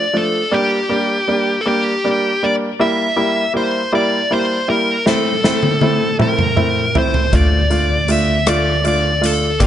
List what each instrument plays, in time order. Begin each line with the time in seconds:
Already playing: lead electric guitar D5
0.13 upright piano F3 A3 D4, lead electric guitar A4
0.51 upright piano G3 A#3 D4, lead electric guitar G4
0.89 upright piano G3 A#3 D4
1.28 upright piano G3 A#3 D4
1.61 lead electric guitar A4
1.65 upright piano G3 A#3 D4, lead electric guitar G4
2.04 upright piano G3 A#3 D4
2.43 upright piano G3 A#3 D4, lead electric guitar D5
2.79 upright piano G3 A#3 E4, lead electric guitar E5
3.16 upright piano G3 A#3 E4
3.54 upright piano G3 A#3 E4, lead electric guitar C5
3.92 upright piano G3 A#3 E4, lead electric guitar D5
4.30 upright piano G3 A#3 E4, lead electric guitar C5
4.68 upright piano G3 A#3 E4, lead electric guitar A#4
5.06 upright piano A3 C4 E4, lead electric guitar A4, snare
5.44 upright piano A3 C4 E4, snare
5.63 high tom
5.81 upright piano A3 C4 E4, high tom
6.19 upright piano A3 C4 E4, lead electric guitar A#4, mid tom
6.39 mid tom
6.56 upright piano A3 C4 E4, mid tom
6.95 upright piano A3 C4 E4, lead electric guitar C5, floor tom
7.14 floor tom
7.33 upright bass D2, upright piano A3 D4 F4, lead electric guitar D5, kick, closed hi-hat
7.70 upright piano A3 D4 F4, closed hi-hat
8.08 upright piano A3 D4 F4, lead electric guitar E5, closed hi-hat
8.47 upright piano A3 D4 F4, lead electric guitar D5, cross-stick, closed hi-hat
8.84 upright piano A3 D4 F4, lead electric guitar D5, closed hi-hat
9.21 upright piano A3 D4 F4, closed hi-hat
9.26 lead electric guitar A4
9.60 upright bass G1, upright piano A#3 D4 G4, lead electric guitar G4, kick, closed hi-hat